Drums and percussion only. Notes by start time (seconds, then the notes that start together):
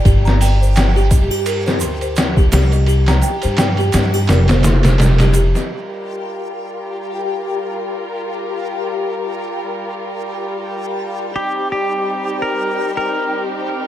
0.05 kick, ride, shaker
0.26 snare, shaker
0.41 open hi-hat, shaker
0.63 shaker
0.76 snare, ride, shaker
0.97 shaker
1.11 kick, ride, shaker
1.31 triangle, shaker
1.46 ride, shaker
1.67 snare, shaker
1.80 ride, shaker
2.01 ride, shaker
2.16 snare, ride, shaker
2.37 kick, shaker
2.52 snare, ride, triangle, shaker
2.72 ride, shaker
2.86 ride, shaker
3.06 snare, ride, shaker
3.22 ride, shaker
3.42 ride, shaker
3.57 snare, ride, shaker
3.77 ride, shaker
3.92 snare, ride, shaker
4.14 triangle, shaker
4.27 snare, ride, shaker
4.48 snare, ride, shaker
4.63 snare, ride, shaker
4.83 snare, ride, shaker
4.98 snare, ride, shaker
5.18 snare, ride, shaker
5.34 ride, shaker
5.55 snare, shaker